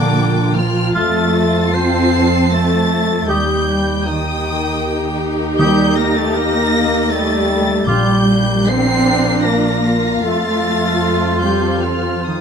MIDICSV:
0, 0, Header, 1, 11, 480
1, 0, Start_track
1, 0, Tempo, 780234
1, 586, Time_signature, 3, 2, 24, 8
1, 2499, Tempo, 762389
1, 4899, Tempo, 787402
1, 6819, Tempo, 823045
1, 7626, End_track
2, 0, Start_track
2, 0, Title_t, "Violin section"
2, 0, Program_c, 0, 48
2, 0, Note_on_c, 0, 86, 102
2, 343, Note_off_c, 0, 86, 0
2, 345, Note_on_c, 0, 89, 99
2, 587, Note_off_c, 0, 89, 0
2, 593, Note_on_c, 0, 93, 104
2, 1065, Note_off_c, 0, 93, 0
2, 1072, Note_on_c, 0, 96, 102
2, 1545, Note_off_c, 0, 96, 0
2, 1550, Note_on_c, 0, 93, 102
2, 2025, Note_off_c, 0, 93, 0
2, 2025, Note_on_c, 0, 91, 100
2, 2490, Note_off_c, 0, 91, 0
2, 2504, Note_on_c, 0, 87, 99
2, 3226, Note_off_c, 0, 87, 0
2, 3463, Note_on_c, 0, 91, 107
2, 3684, Note_off_c, 0, 91, 0
2, 3701, Note_on_c, 0, 94, 102
2, 3820, Note_off_c, 0, 94, 0
2, 3828, Note_on_c, 0, 93, 102
2, 3942, Note_off_c, 0, 93, 0
2, 3947, Note_on_c, 0, 94, 120
2, 4416, Note_on_c, 0, 93, 110
2, 4421, Note_off_c, 0, 94, 0
2, 4898, Note_off_c, 0, 93, 0
2, 4901, Note_on_c, 0, 91, 108
2, 5390, Note_off_c, 0, 91, 0
2, 5392, Note_on_c, 0, 96, 123
2, 5855, Note_on_c, 0, 94, 96
2, 5863, Note_off_c, 0, 96, 0
2, 6331, Note_on_c, 0, 93, 108
2, 6332, Note_off_c, 0, 94, 0
2, 7051, Note_off_c, 0, 93, 0
2, 7053, Note_on_c, 0, 91, 74
2, 7287, Note_off_c, 0, 91, 0
2, 7290, Note_on_c, 0, 89, 74
2, 7535, Note_off_c, 0, 89, 0
2, 7540, Note_on_c, 0, 87, 69
2, 7626, Note_off_c, 0, 87, 0
2, 7626, End_track
3, 0, Start_track
3, 0, Title_t, "Flute"
3, 0, Program_c, 1, 73
3, 583, Note_on_c, 1, 89, 72
3, 811, Note_off_c, 1, 89, 0
3, 2027, Note_on_c, 1, 87, 79
3, 2247, Note_off_c, 1, 87, 0
3, 3461, Note_on_c, 1, 87, 79
3, 3683, Note_off_c, 1, 87, 0
3, 4893, Note_on_c, 1, 86, 82
3, 5123, Note_off_c, 1, 86, 0
3, 6333, Note_on_c, 1, 84, 75
3, 7268, Note_off_c, 1, 84, 0
3, 7293, Note_on_c, 1, 84, 58
3, 7626, Note_off_c, 1, 84, 0
3, 7626, End_track
4, 0, Start_track
4, 0, Title_t, "Violin section"
4, 0, Program_c, 2, 48
4, 0, Note_on_c, 2, 70, 90
4, 0, Note_on_c, 2, 79, 95
4, 564, Note_off_c, 2, 79, 0
4, 566, Note_off_c, 2, 70, 0
4, 590, Note_on_c, 2, 81, 88
4, 592, Note_on_c, 2, 69, 82
4, 2000, Note_off_c, 2, 81, 0
4, 2001, Note_off_c, 2, 69, 0
4, 2021, Note_on_c, 2, 79, 82
4, 2022, Note_on_c, 2, 70, 88
4, 3436, Note_off_c, 2, 79, 0
4, 3465, Note_on_c, 2, 75, 92
4, 4873, Note_off_c, 2, 70, 0
4, 4875, Note_off_c, 2, 75, 0
4, 4903, Note_on_c, 2, 70, 91
4, 4903, Note_on_c, 2, 77, 92
4, 6313, Note_off_c, 2, 70, 0
4, 6335, Note_on_c, 2, 69, 84
4, 7626, Note_off_c, 2, 69, 0
4, 7626, Note_off_c, 2, 77, 0
4, 7626, End_track
5, 0, Start_track
5, 0, Title_t, "Clarinet"
5, 0, Program_c, 3, 71
5, 0, Note_on_c, 3, 62, 90
5, 341, Note_on_c, 3, 65, 88
5, 350, Note_off_c, 3, 62, 0
5, 583, Note_off_c, 3, 65, 0
5, 587, Note_on_c, 3, 69, 97
5, 1073, Note_on_c, 3, 72, 94
5, 1082, Note_off_c, 3, 69, 0
5, 1380, Note_off_c, 3, 72, 0
5, 1547, Note_on_c, 3, 69, 90
5, 2026, Note_on_c, 3, 67, 94
5, 2035, Note_off_c, 3, 69, 0
5, 2500, Note_on_c, 3, 63, 80
5, 2509, Note_off_c, 3, 67, 0
5, 3224, Note_off_c, 3, 63, 0
5, 3457, Note_on_c, 3, 67, 96
5, 3699, Note_on_c, 3, 70, 92
5, 3708, Note_off_c, 3, 67, 0
5, 3818, Note_on_c, 3, 69, 83
5, 3827, Note_off_c, 3, 70, 0
5, 3935, Note_on_c, 3, 70, 96
5, 3945, Note_off_c, 3, 69, 0
5, 4415, Note_on_c, 3, 69, 96
5, 4424, Note_off_c, 3, 70, 0
5, 4898, Note_off_c, 3, 69, 0
5, 4902, Note_on_c, 3, 67, 94
5, 5394, Note_on_c, 3, 72, 99
5, 5403, Note_off_c, 3, 67, 0
5, 5860, Note_on_c, 3, 70, 80
5, 5869, Note_off_c, 3, 72, 0
5, 6344, Note_on_c, 3, 69, 86
5, 6353, Note_off_c, 3, 70, 0
5, 7057, Note_off_c, 3, 69, 0
5, 7062, Note_on_c, 3, 67, 68
5, 7297, Note_on_c, 3, 65, 67
5, 7305, Note_off_c, 3, 67, 0
5, 7541, Note_on_c, 3, 63, 58
5, 7550, Note_off_c, 3, 65, 0
5, 7626, Note_off_c, 3, 63, 0
5, 7626, End_track
6, 0, Start_track
6, 0, Title_t, "Oboe"
6, 0, Program_c, 4, 68
6, 585, Note_on_c, 4, 65, 81
6, 763, Note_off_c, 4, 65, 0
6, 2023, Note_on_c, 4, 67, 76
6, 2195, Note_off_c, 4, 67, 0
6, 3464, Note_on_c, 4, 67, 83
6, 3634, Note_off_c, 4, 67, 0
6, 4902, Note_on_c, 4, 65, 84
6, 5078, Note_off_c, 4, 65, 0
6, 6332, Note_on_c, 4, 65, 79
6, 7268, Note_off_c, 4, 65, 0
6, 7292, Note_on_c, 4, 65, 62
6, 7626, Note_off_c, 4, 65, 0
6, 7626, End_track
7, 0, Start_track
7, 0, Title_t, "Viola section"
7, 0, Program_c, 5, 48
7, 0, Note_on_c, 5, 58, 89
7, 0, Note_on_c, 5, 65, 94
7, 562, Note_off_c, 5, 58, 0
7, 590, Note_on_c, 5, 60, 87
7, 1998, Note_off_c, 5, 65, 0
7, 2000, Note_off_c, 5, 60, 0
7, 2021, Note_on_c, 5, 63, 88
7, 2021, Note_on_c, 5, 67, 84
7, 4873, Note_off_c, 5, 63, 0
7, 4873, Note_off_c, 5, 67, 0
7, 4895, Note_on_c, 5, 62, 95
7, 4895, Note_on_c, 5, 65, 89
7, 6309, Note_off_c, 5, 62, 0
7, 6336, Note_on_c, 5, 60, 84
7, 7626, Note_off_c, 5, 60, 0
7, 7626, Note_off_c, 5, 65, 0
7, 7626, End_track
8, 0, Start_track
8, 0, Title_t, "Cello section"
8, 0, Program_c, 6, 48
8, 0, Note_on_c, 6, 50, 88
8, 344, Note_on_c, 6, 53, 83
8, 345, Note_off_c, 6, 50, 0
8, 586, Note_off_c, 6, 53, 0
8, 588, Note_on_c, 6, 57, 94
8, 1072, Note_off_c, 6, 57, 0
8, 1074, Note_on_c, 6, 60, 97
8, 1546, Note_off_c, 6, 60, 0
8, 1548, Note_on_c, 6, 57, 95
8, 2015, Note_off_c, 6, 57, 0
8, 2025, Note_on_c, 6, 55, 93
8, 2500, Note_off_c, 6, 55, 0
8, 2503, Note_on_c, 6, 51, 89
8, 3211, Note_off_c, 6, 51, 0
8, 3464, Note_on_c, 6, 55, 90
8, 3685, Note_off_c, 6, 55, 0
8, 3702, Note_on_c, 6, 58, 85
8, 3818, Note_on_c, 6, 57, 88
8, 3820, Note_off_c, 6, 58, 0
8, 3937, Note_off_c, 6, 57, 0
8, 3937, Note_on_c, 6, 58, 100
8, 4416, Note_off_c, 6, 58, 0
8, 4416, Note_on_c, 6, 57, 96
8, 4898, Note_off_c, 6, 57, 0
8, 4898, Note_on_c, 6, 55, 100
8, 5386, Note_on_c, 6, 60, 110
8, 5389, Note_off_c, 6, 55, 0
8, 5860, Note_off_c, 6, 60, 0
8, 5861, Note_on_c, 6, 58, 88
8, 6333, Note_on_c, 6, 57, 90
8, 6335, Note_off_c, 6, 58, 0
8, 7038, Note_off_c, 6, 57, 0
8, 7052, Note_on_c, 6, 55, 74
8, 7291, Note_on_c, 6, 53, 68
8, 7292, Note_off_c, 6, 55, 0
8, 7535, Note_off_c, 6, 53, 0
8, 7537, Note_on_c, 6, 51, 61
8, 7626, Note_off_c, 6, 51, 0
8, 7626, End_track
9, 0, Start_track
9, 0, Title_t, "French horn section"
9, 0, Program_c, 7, 60
9, 0, Note_on_c, 7, 50, 86
9, 343, Note_off_c, 7, 50, 0
9, 354, Note_on_c, 7, 53, 76
9, 587, Note_on_c, 7, 57, 96
9, 591, Note_off_c, 7, 53, 0
9, 1062, Note_off_c, 7, 57, 0
9, 1085, Note_on_c, 7, 60, 90
9, 1551, Note_off_c, 7, 60, 0
9, 1554, Note_on_c, 7, 57, 91
9, 2020, Note_on_c, 7, 55, 93
9, 2027, Note_off_c, 7, 57, 0
9, 2498, Note_off_c, 7, 55, 0
9, 2500, Note_on_c, 7, 51, 86
9, 3224, Note_off_c, 7, 51, 0
9, 3463, Note_on_c, 7, 55, 96
9, 3684, Note_off_c, 7, 55, 0
9, 3710, Note_on_c, 7, 58, 90
9, 3824, Note_off_c, 7, 58, 0
9, 3825, Note_on_c, 7, 57, 85
9, 3941, Note_off_c, 7, 57, 0
9, 3944, Note_on_c, 7, 58, 98
9, 4419, Note_off_c, 7, 58, 0
9, 4423, Note_on_c, 7, 55, 102
9, 4896, Note_off_c, 7, 55, 0
9, 4904, Note_on_c, 7, 55, 99
9, 5382, Note_off_c, 7, 55, 0
9, 5395, Note_on_c, 7, 60, 102
9, 5864, Note_off_c, 7, 60, 0
9, 5869, Note_on_c, 7, 58, 81
9, 6330, Note_off_c, 7, 58, 0
9, 6342, Note_on_c, 7, 57, 92
9, 7056, Note_off_c, 7, 57, 0
9, 7058, Note_on_c, 7, 55, 75
9, 7295, Note_off_c, 7, 55, 0
9, 7296, Note_on_c, 7, 53, 66
9, 7470, Note_off_c, 7, 53, 0
9, 7543, Note_on_c, 7, 51, 57
9, 7626, Note_off_c, 7, 51, 0
9, 7626, End_track
10, 0, Start_track
10, 0, Title_t, "Timpani"
10, 0, Program_c, 8, 47
10, 3462, Note_on_c, 8, 51, 96
10, 4150, Note_off_c, 8, 51, 0
10, 4897, Note_on_c, 8, 46, 84
10, 5603, Note_off_c, 8, 46, 0
10, 7626, End_track
11, 0, Start_track
11, 0, Title_t, "Double bass section"
11, 0, Program_c, 10, 48
11, 0, Note_on_c, 10, 34, 88
11, 562, Note_off_c, 10, 34, 0
11, 591, Note_on_c, 10, 41, 87
11, 2000, Note_off_c, 10, 41, 0
11, 2025, Note_on_c, 10, 39, 77
11, 4875, Note_off_c, 10, 39, 0
11, 4901, Note_on_c, 10, 34, 89
11, 6312, Note_off_c, 10, 34, 0
11, 6335, Note_on_c, 10, 41, 75
11, 7626, Note_off_c, 10, 41, 0
11, 7626, End_track
0, 0, End_of_file